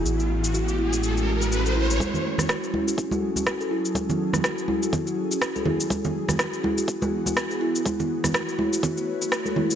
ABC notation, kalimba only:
X:1
M:4/4
L:1/16
Q:"Swing 16ths" 1/4=123
K:F#m
V:1 name="Kalimba"
z4 F z E F z F z F F A E z | z4 F z E F z F z F F A E z | z4 F z E F z F z F F A E z | z4 F z E F z F z F z G E z |
z4 F z E F z F z F F A E z |]